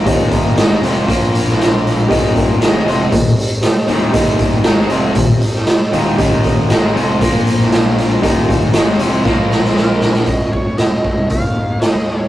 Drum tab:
HH |x-x-x-x-x-x-x-x-|x-x-x-x-x-x-x-x-|x-x-x-x-x-x-x-x-|x-x-x-x-x-x-x-x-|
SD |----oo-----oo---|----o-------o---|----oo-----oo---|----o------oo---|
BD |o-o-----o-------|o-o-----o-------|o-o-----o-------|o-o-----o-------|

HH |x-x-x-x---------|x---x---x---x---|
SD |----o---o-ooo-oo|----o-------o---|
BD |o-o-----o-------|o-o---o-o-------|